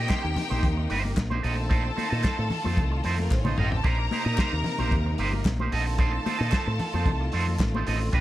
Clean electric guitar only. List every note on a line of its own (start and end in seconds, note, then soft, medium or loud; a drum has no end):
0.08 0.30 A#3 medium
0.08 0.23 D#4 medium
0.08 0.22 G4 medium
0.08 0.22 C5 medium
0.23 muted clean electric guitar stroke medium
0.36 muted clean electric guitar stroke soft
0.50 0.67 A#3 soft
0.50 0.67 D#4 medium
0.50 0.66 G4 medium
0.50 0.66 C5 medium
0.77 muted clean electric guitar stroke medium
0.89 1.11 A#3 medium
0.89 1.04 D#4 medium
0.89 1.03 G4 medium
0.89 1.03 C5 medium
1.04 muted clean electric guitar stroke soft
1.16 muted clean electric guitar stroke soft
1.30 1.42 A#3 medium
1.30 1.42 D#4 medium
1.30 1.43 G4 medium
1.30 1.44 C5 medium
1.42 1.64 C4 medium
1.42 1.57 D#4 medium
1.42 1.56 A4 medium
1.42 1.56 D#5 medium
1.56 muted clean electric guitar stroke soft
1.69 1.91 C4 medium
1.69 1.84 D#4 loud
1.69 1.83 A4 loud
1.69 1.83 C5 medium
1.84 muted clean electric guitar stroke soft
1.96 2.10 C4 medium
1.96 2.10 D#4 medium
1.96 2.09 A4 medium
1.96 2.09 C5 medium
2.10 2.21 C4 soft
2.10 2.22 D#4 medium
2.10 2.22 A4 medium
2.10 2.24 D#5 medium
2.22 2.44 C4 medium
2.22 2.37 D#4 medium
2.22 2.36 A4 medium
2.22 2.36 C5 medium
2.37 muted clean electric guitar stroke soft
2.50 muted clean electric guitar stroke soft
2.64 2.82 C4 medium
2.64 2.81 D#4 soft
2.64 2.81 A4 soft
2.64 2.81 C5 medium
2.92 muted clean electric guitar stroke soft
3.04 3.26 C4 medium
3.04 3.19 D#4 medium
3.04 3.18 A4 medium
3.04 3.17 C5 loud
3.19 muted clean electric guitar stroke soft
3.31 muted clean electric guitar stroke soft
3.44 3.56 C4 soft
3.44 3.57 D#4 soft
3.44 3.57 A4 medium
3.44 3.58 C5 medium
3.57 3.79 C4 medium
3.57 3.72 D#4 medium
3.57 3.71 A4 medium
3.57 3.71 D#5 medium
3.71 muted clean electric guitar stroke soft
3.84 4.06 A#3 medium
3.84 3.99 D#4 medium
3.84 3.98 G4 medium
3.84 3.97 C5 loud
3.99 muted clean electric guitar stroke medium
4.11 4.25 A#3 medium
4.11 4.25 D#4 medium
4.11 4.25 G4 medium
4.11 4.25 C5 medium
4.25 4.37 A#3 medium
4.25 4.37 D#4 medium
4.25 4.38 G4 medium
4.25 4.39 D#5 medium
4.38 4.60 A#3 medium
4.38 4.53 D#4 medium
4.38 4.52 G4 medium
4.38 4.51 C5 medium
4.53 muted clean electric guitar stroke soft
4.65 muted clean electric guitar stroke medium
4.78 4.96 A#3 medium
4.78 4.95 D#4 medium
4.78 4.95 G4 medium
4.78 4.95 C5 medium
5.06 muted clean electric guitar stroke soft
5.18 5.40 A#3 medium
5.18 5.33 D#4 medium
5.18 5.33 G4 medium
5.18 5.32 C5 loud
5.33 muted clean electric guitar stroke soft
5.46 muted clean electric guitar stroke soft
5.60 5.71 A#3 medium
5.60 5.71 D#4 soft
5.60 5.73 G4 medium
5.60 5.73 C5 medium
5.72 5.94 C4 medium
5.72 5.86 D#4 medium
5.72 5.85 A4 medium
5.72 5.85 D#5 loud
5.86 muted clean electric guitar stroke medium
5.98 6.20 C4 medium
5.98 6.13 D#4 loud
5.98 6.13 A4 loud
5.98 6.11 C5 loud
6.13 muted clean electric guitar stroke soft
6.25 6.39 C4 medium
6.25 6.39 D#4 medium
6.25 6.38 A4 medium
6.25 6.38 C5 medium
6.39 6.51 C4 medium
6.39 6.51 D#4 medium
6.39 6.52 A4 medium
6.39 6.53 D#5 medium
6.52 6.74 C4 medium
6.52 6.67 D#4 medium
6.52 6.66 A4 medium
6.52 6.65 C5 medium
6.67 muted clean electric guitar stroke medium
6.79 muted clean electric guitar stroke soft
6.93 7.10 C4 soft
6.93 7.10 D#4 soft
6.93 7.10 A4 medium
6.93 7.09 C5 medium
7.21 muted clean electric guitar stroke soft
7.33 7.54 C4 medium
7.33 7.48 D#4 medium
7.33 7.47 A4 loud
7.33 7.46 C5 medium
7.48 muted clean electric guitar stroke soft
7.60 muted clean electric guitar stroke soft
7.75 7.85 C4 medium
7.75 7.86 D#4 soft
7.75 7.86 A4 medium
7.75 7.87 C5 medium
7.86 8.08 C4 medium
7.86 8.00 D#4 medium
7.86 8.00 A4 medium
7.86 8.00 D#5 medium
8.00 muted clean electric guitar stroke soft
8.13 8.21 A#3 medium
8.13 8.21 D#4 medium
8.13 8.21 G4 medium
8.13 8.21 C5 loud